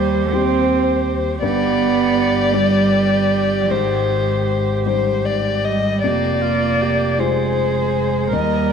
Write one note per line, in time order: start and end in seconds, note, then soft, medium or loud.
0.00 0.28 D#2 soft
0.00 1.44 D#2 soft
0.00 0.34 G3 medium
0.00 1.39 G4 soft
0.00 1.38 C5 soft
0.32 1.39 G3 soft
0.32 1.06 C4 medium
0.32 1.39 G4 soft
0.32 1.39 C5 soft
1.42 3.72 G1 soft
1.42 2.51 G2 soft
1.42 2.55 B3 medium
1.42 5.79 G4 medium
1.42 3.72 D5 medium
2.54 3.66 G3 soft
2.54 3.71 G3 medium
2.54 3.66 G4 soft
2.54 3.66 D5 soft
3.69 6.06 G#1 soft
3.69 4.83 G#2 soft
3.69 4.85 D#3 medium
3.69 4.79 C5 soft
4.86 5.99 G3 soft
4.86 6.00 D#4 soft
4.86 5.27 C5 soft
4.86 6.00 C5 soft
5.25 5.66 D5 soft
5.64 6.05 G3 medium
5.64 6.03 D#5 soft
6.03 8.35 F1 soft
6.03 7.16 F2 soft
6.03 7.21 A#3 medium
6.03 6.44 G4 soft
6.03 7.21 D5 soft
6.42 6.83 F4 soft
6.82 7.21 G4 soft
7.19 8.35 G#3 medium
7.19 8.29 F4 soft
7.19 8.29 G4 soft
7.19 8.32 G#4 soft
7.19 8.29 C5 soft
7.19 8.34 C5 soft
8.33 8.73 D#2 soft
8.33 8.73 G3 medium
8.33 8.73 A#4 soft
8.33 8.72 D#5 soft